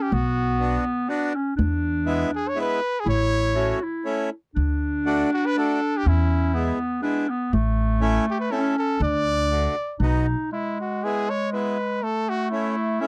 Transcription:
0.00 0.14 C#4 medium
0.00 0.15 G4 medium
0.12 0.76 B1 medium
0.12 1.11 B3 loud
0.12 0.89 F#4 medium
0.59 0.84 B3 medium
0.59 0.85 D4 medium
0.59 0.85 F#4 medium
1.09 1.33 B3 medium
1.09 1.33 D4 medium
1.09 1.37 D4 loud
1.09 1.33 F#4 medium
1.36 1.56 C#4 medium
1.56 2.22 E2 loud
1.56 2.76 D4 medium
2.05 2.31 G#3 medium
2.05 2.31 B3 medium
2.05 2.31 E4 loud
2.36 2.50 G#4 medium
2.48 2.58 C#5 medium
2.55 2.80 G#3 medium
2.55 2.80 B3 medium
2.55 2.80 E4 medium
2.61 3.01 B4 medium
3.00 3.09 G#4 medium
3.06 3.71 A1 medium
3.06 3.58 E4 medium
3.06 3.80 C#5 loud
3.55 3.79 A3 medium
3.55 3.80 C#4 medium
3.55 3.80 E4 medium
3.55 3.85 F#4 medium
3.83 4.33 E4 medium
4.05 4.30 A3 medium
4.05 4.30 C#4 medium
4.05 4.30 E4 medium
4.55 5.21 D2 medium
4.55 6.07 D4 loud
5.06 5.30 A3 medium
5.06 5.30 D4 medium
5.06 5.31 F#4 medium
5.34 5.48 F#4 medium
5.46 5.57 B4 loud
5.56 5.80 A3 medium
5.56 5.80 D4 medium
5.56 5.81 F#4 medium
5.56 5.99 A4 medium
5.97 6.10 G4 medium
6.06 6.70 E2 medium
6.06 6.56 C#4 medium
6.06 6.83 E4 medium
6.54 6.79 G#3 medium
6.54 6.78 B3 medium
6.54 7.02 B3 loud
6.54 6.79 E4 medium
7.02 7.26 G#3 medium
7.02 7.27 B3 medium
7.02 7.31 D4 loud
7.02 7.27 E4 medium
7.30 7.55 B3 medium
7.53 8.17 A1 medium
7.53 8.52 A3 loud
8.01 8.26 A3 medium
8.01 8.25 C#4 medium
8.01 8.26 E4 loud
8.30 8.35 G4 medium
8.40 8.53 B4 medium
8.51 8.75 A3 medium
8.51 8.75 C#4 medium
8.51 8.98 C#4 loud
8.51 8.76 E4 medium
8.51 8.78 A4 medium
8.79 9.00 A4 medium
9.00 9.66 D2 loud
9.00 9.72 D4 medium
9.00 9.98 D5 loud
9.51 9.75 A3 medium
9.51 9.75 D4 medium
9.51 9.76 F#4 medium
9.99 10.33 B1 medium
9.99 10.26 B3 medium
9.99 10.48 D#4 medium
9.99 10.26 D#4 medium
9.99 10.27 F#4 medium
10.52 11.99 G#3 medium
10.52 10.78 E4 medium
10.81 11.05 F#4 medium
11.04 11.28 G#3 medium
11.04 11.29 B3 medium
11.04 11.28 E4 medium
11.04 11.31 G#4 loud
11.30 11.52 C#5 medium
11.53 11.77 G#3 medium
11.53 11.78 B3 medium
11.53 11.78 E4 medium
11.53 12.05 B4 medium
12.02 13.02 A3 medium
12.02 12.31 A4 medium
12.29 12.50 F#4 medium
12.51 12.76 A3 medium
12.51 12.76 C#4 medium
12.51 13.07 E4 medium
12.51 12.76 E4 medium
13.01 13.07 A3 medium
13.01 13.07 C#4 loud
13.01 13.07 C#4 medium
13.01 13.07 E4 medium

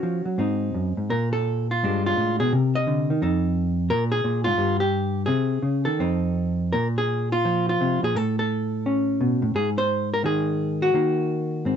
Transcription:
0.00 0.25 F3 medium
0.00 0.37 C#4 soft
0.00 1.10 F#4 medium
0.25 0.38 F#3 soft
0.38 0.74 G#2 medium
0.38 1.09 C4 soft
0.38 1.09 D#4 soft
0.74 0.97 F#2 medium
0.97 1.10 G#2 soft
1.10 1.82 A#2 medium
1.10 1.32 A#4 medium
1.33 1.69 A4 medium
1.71 2.05 F4 medium
1.83 2.17 G2 medium
1.83 2.53 G#3 soft
1.83 2.53 D4 soft
2.06 2.39 F4 medium
2.17 2.40 A2 medium
2.40 2.52 B2 medium
2.40 2.52 G#4 medium
2.53 3.20 C3 medium
2.53 3.09 A#4 medium
2.75 3.78 D#5 medium
2.87 3.09 D3 medium
3.10 3.22 D#3 medium
3.22 3.91 F2 medium
3.22 3.89 D#4 soft
3.22 3.90 A4 soft
3.90 4.23 A#2 medium
3.90 4.03 A#4 loud
4.12 4.44 G#4 loud
4.24 4.47 A#2 medium
4.44 4.57 G#2 medium
4.44 4.80 F4 medium
4.58 5.27 G2 medium
4.80 5.26 G4 medium
5.26 5.62 C3 medium
5.26 5.85 G#4 medium
5.62 5.87 C#3 medium
5.85 6.00 D#3 soft
5.85 6.72 A4 medium
5.99 6.74 F2 medium
5.99 6.73 C4 soft
5.99 6.73 D#4 soft
6.73 7.80 A#2 medium
6.73 6.87 A#4 medium
6.98 7.32 G#4 medium
7.32 7.68 F4 medium
7.45 8.14 F3 medium
7.69 8.04 F4 medium
7.81 8.03 C3 medium
8.03 8.16 A#2 medium
8.03 8.16 G#4 medium
8.15 9.41 A2 medium
8.15 8.38 A4 medium
8.39 9.43 A4 medium
8.86 9.54 C#4 medium
9.21 9.43 B2 medium
9.42 9.54 A2 medium
9.55 10.93 G#2 medium
9.55 9.69 G#4 medium
9.78 10.13 C5 medium
10.14 10.25 A#4 medium
10.24 10.93 D#3 medium
10.24 10.96 G#4 medium
10.82 11.76 F#4 medium
10.94 11.76 D#3 medium
10.94 11.65 A#3 soft
11.65 11.76 G#2 medium
11.65 11.76 C4 soft

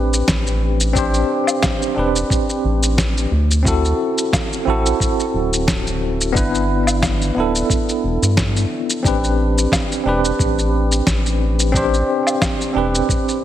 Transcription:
0.00 0.22 A1 medium
0.00 0.93 C4 medium
0.00 0.95 D4 medium
0.00 0.97 G4 medium
0.00 1.99 B4 medium
0.14 shaker medium
0.28 1.23 A1 medium
0.28 kick medium
0.28 snare medium
0.28 shaker medium
0.47 shaker soft
0.81 shaker medium
0.93 1.92 C4 medium
0.93 1.93 D4 medium
0.93 1.94 G4 medium
0.93 kick loud
0.93 shaker medium
0.98 1.94 C5 medium
1.14 shaker soft
1.47 low woodblock medium
1.47 shaker medium
1.63 kick loud
1.63 snare loud
1.63 low woodblock medium
1.63 shaker medium
1.82 shaker soft
1.95 2.23 E1 medium
1.95 3.29 C4 medium
1.95 3.29 D4 medium
1.95 3.30 G4 medium
1.99 3.31 B4 medium
2.16 shaker medium
2.30 kick loud
2.30 shaker medium
2.50 shaker soft
2.64 3.26 A1 medium
2.83 shaker medium
2.98 kick loud
2.98 snare medium
2.98 shaker medium
3.18 shaker soft
3.31 3.93 D2 medium
3.51 shaker medium
3.63 4.62 C4 medium
3.63 4.62 E4 medium
3.63 4.63 F#4 medium
3.63 kick loud
3.63 shaker medium
3.68 4.64 A4 medium
3.85 shaker soft
4.18 shaker medium
4.33 kick loud
4.33 snare loud
4.33 low woodblock medium
4.33 shaker medium
4.53 shaker soft
4.65 4.93 A1 medium
4.65 6.31 C4 medium
4.65 6.32 E4 medium
4.65 6.32 F#4 medium
4.70 6.33 A4 medium
4.86 shaker medium
5.00 kick loud
5.00 shaker medium
5.20 shaker soft
5.34 6.37 D1 medium
5.54 shaker medium
5.68 kick loud
5.68 snare loud
5.68 shaker medium
5.87 shaker soft
6.21 shaker medium
6.32 7.30 G1 medium
6.32 7.31 B3 medium
6.32 7.32 D4 medium
6.32 7.33 E4 medium
6.32 kick loud
6.32 shaker medium
6.37 7.34 B4 medium
6.55 shaker soft
6.87 low woodblock medium
6.87 shaker medium
7.02 kick medium
7.02 snare loud
7.02 low woodblock medium
7.02 shaker medium
7.22 shaker soft
7.35 7.63 D1 medium
7.35 9.00 B3 medium
7.35 9.01 D4 medium
7.35 9.02 E4 medium
7.40 9.03 A4 medium
7.56 shaker medium
7.70 kick loud
7.70 shaker medium
7.89 shaker soft
8.04 8.18 E1 medium
8.22 8.65 G2 medium
8.22 shaker medium
8.37 kick loud
8.37 snare loud
8.37 shaker medium
8.57 shaker soft
8.90 shaker medium
9.03 9.66 A1 loud
9.03 10.01 C4 medium
9.03 10.02 D4 medium
9.03 10.03 G4 medium
9.03 kick loud
9.03 shaker medium
9.08 10.04 B4 medium
9.24 shaker soft
9.58 shaker medium
9.72 kick loud
9.72 snare medium
9.72 low woodblock medium
9.72 shaker medium
9.92 shaker soft
10.04 10.32 E1 medium
10.04 11.70 C4 medium
10.04 11.71 D4 medium
10.04 11.71 G4 medium
10.09 11.72 B4 medium
10.25 shaker medium
10.39 11.01 A1 medium
10.39 kick loud
10.39 shaker soft
10.59 shaker soft
10.92 shaker medium
11.07 12.02 A1 loud
11.07 kick medium
11.07 snare medium
11.07 shaker medium
11.26 shaker soft
11.60 shaker medium
11.72 12.71 C4 medium
11.72 12.72 D4 medium
11.72 12.73 G4 medium
11.72 kick loud
11.72 shaker medium
11.77 12.73 C5 medium
11.94 shaker soft
12.27 low woodblock medium
12.27 shaker medium
12.42 kick medium
12.42 snare loud
12.42 low woodblock medium
12.42 shaker medium
12.61 shaker soft
12.73 13.02 E1 medium
12.73 13.44 C4 medium
12.73 13.44 D4 medium
12.73 13.44 G4 medium
12.78 13.44 B4 medium
12.95 shaker medium
13.09 kick medium
13.09 shaker soft
13.29 shaker soft

